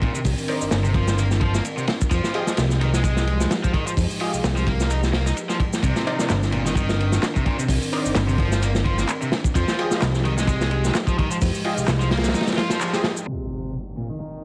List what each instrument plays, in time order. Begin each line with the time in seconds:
Already playing: ambient pad D#3 C4 D4 A#4
0.02 overdriven electric guitar A#2, kick, ride
0.14 overdriven electric guitar C3, shaker
0.24 analog synth bass C2, kick, open hi-hat, shaker
0.38 shaker
0.48 synth stab D#4 A#4 C5 D5, ride
0.61 analog synth bass G1, shaker
0.71 analog synth bass G1, snare, ride, shaker
0.84 overdriven electric guitar C3, shaker
0.94 overdriven electric guitar F3, kick, ride
1.08 snare, shaker
1.18 overdriven electric guitar A#3, ride, shaker
1.31 snare, shaker
1.41 overdriven electric guitar F3, kick, ride
1.54 overdriven electric guitar A#3, snare, shaker
1.65 ride, shaker
1.77 overdriven electric guitar C3, shaker
1.87 snare, ride
2.01 kick, shaker
2.11 analog synth bass F2, overdriven electric guitar F3, ambient pad F3 G#3 D#4 G4, kick, ride, shaker
2.24 snare, shaker
2.34 synth stab F4 G4 G#4 D#5, ride
2.47 snare, shaker
2.57 analog synth bass C2, snare, ride, shaker
2.70 snare, shaker
2.81 overdriven electric guitar D#3, ride
2.93 overdriven electric guitar G#3, snare, shaker
3.04 overdriven electric guitar G#3, kick, ride, shaker
3.17 snare, shaker
3.27 ride
3.40 snare, shaker
3.51 snare, ride, shaker
3.64 overdriven electric guitar F3, kick, shaker
3.74 overdriven electric guitar D#3, kick, ride
3.87 overdriven electric guitar F3, shaker
3.97 analog synth bass F2, kick, open hi-hat, shaker
4.11 shaker
4.20 synth stab F4 G4 G#4 D#5, ride
4.33 analog synth bass C2, shaker
4.44 analog synth bass C2, snare, ride, shaker
4.57 overdriven electric guitar F3, shaker
4.67 overdriven electric guitar A#3, kick, ride
4.80 snare, shaker
4.90 overdriven electric guitar D#4, ride, shaker
5.03 snare, shaker
5.13 overdriven electric guitar A#3, snare, ride
5.26 overdriven electric guitar D#4, snare, shaker
5.37 ride, shaker
5.49 overdriven electric guitar F3, snare, shaker
5.60 kick, ride
5.73 snare, shaker
5.83 analog synth bass C2, overdriven electric guitar C3, ambient pad D#3 C4 D4 A#4, kick, ride, shaker
5.96 snare, shaker
6.07 synth stab D#4 A#4 C5 D5, ride
6.19 snare, shaker
6.30 analog synth bass G1, snare, clap, ride, shaker
6.43 snare, shaker
6.52 overdriven electric guitar A#2, ride
6.65 overdriven electric guitar D#3, snare, shaker
6.75 overdriven electric guitar D#3, kick, ride, shaker
6.89 snare, shaker
7.00 ride
7.12 snare, shaker
7.23 snare, clap, ride, shaker
7.35 overdriven electric guitar C3, kick, shaker
7.46 overdriven electric guitar A#2, kick, ride
7.59 overdriven electric guitar C3, shaker
7.68 analog synth bass C2, kick, open hi-hat, shaker
7.82 shaker
7.93 synth stab D#4 A#4 C5 D5, ride
8.06 analog synth bass G1, shaker
8.15 analog synth bass G1, snare, clap, ride, shaker
8.29 overdriven electric guitar C3, shaker
8.38 overdriven electric guitar F3, kick, ride
8.52 snare, shaker
8.62 overdriven electric guitar A#3, ride, shaker
8.75 snare, shaker
8.85 overdriven electric guitar F3, kick, ride
8.98 overdriven electric guitar A#3, snare, shaker
9.08 clap, ride, shaker
9.22 overdriven electric guitar C3, shaker
9.32 snare, ride
9.44 kick, shaker
9.55 analog synth bass F2, overdriven electric guitar F3, ambient pad F3 G#3 D#4 G4, kick, ride, shaker
9.68 snare, shaker
9.79 synth stab F4 G4 G#4 D#5, ride
9.91 snare, shaker
10.02 analog synth bass C2, snare, clap, ride, shaker
10.14 snare, shaker
10.25 overdriven electric guitar D#3, ride
10.38 overdriven electric guitar G#3, snare, shaker
10.47 overdriven electric guitar G#3, kick, ride, shaker
10.61 snare, shaker
10.71 ride
10.84 snare, shaker
10.95 snare, clap, ride, shaker
11.07 overdriven electric guitar F3, kick, shaker
11.18 overdriven electric guitar D#3, kick, ride
11.31 overdriven electric guitar F3, shaker
11.41 analog synth bass F2, kick, open hi-hat, shaker
11.54 shaker
11.64 synth stab F4 G4 G#4 D#5, ride
11.77 analog synth bass C2, shaker
11.88 analog synth bass C2, snare, clap, ride, shaker
12.01 overdriven electric guitar F3, shaker
12.11 overdriven electric guitar A#3, snare, ride
12.17 snare, ride
12.24 snare, ride, shaker
12.29 snare, ride
12.34 overdriven electric guitar D#4, snare, ride, shaker
12.41 snare, ride
12.47 snare, ride, shaker
12.52 snare, ride
12.57 overdriven electric guitar F4, snare, ride
12.70 overdriven electric guitar F3, snare, ride, shaker
12.81 overdriven electric guitar F3, clap, ride, shaker
12.93 overdriven electric guitar F3, synth stab F4 G4 G#4 D#5, snare, shaker
13.04 snare, ride
13.17 shaker
13.27 overdriven electric guitar C3, ambient pad D#3 C4 D4 A#4, impact, shaker
13.64 shaker
13.74 shaker
13.87 shaker
13.97 overdriven electric guitar A#2
14.10 overdriven electric guitar D#3, shaker
14.20 overdriven electric guitar D#3, shaker
14.33 shaker